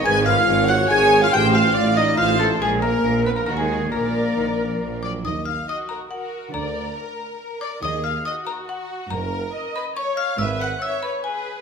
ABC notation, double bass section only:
X:1
M:3/4
L:1/8
Q:1/4=140
K:Ebm
V:1 name="Double bass section" clef=bass
^G,,,2 G,,,2 G,,,2 | =A,,,2 A,,,2 A,,,2 | B,,,2 B,,,2 E,,2 | B,,,2 B,,,2 B,,,2 |
E,,2 z4 | =D,,2 z4 | E,,2 z4 | G,,,2 z4 |
^G,,,2 z4 |]